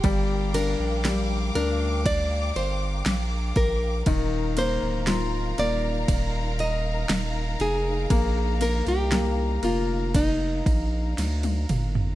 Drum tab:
RD |x-x-x-x-x-x-x-x-|x-x-x-x-x-x-x-x-|x-xxx-x-x-x-xxx-|
SD |----o-------o---|----o-------o---|----o-------o---|
T1 |----------------|----------------|-------------o--|
T2 |----------------|----------------|--------------o-|
FT |----------------|----------------|---------------o|
BD |o-------o-----o-|o-------o-------|o-------o-o-----|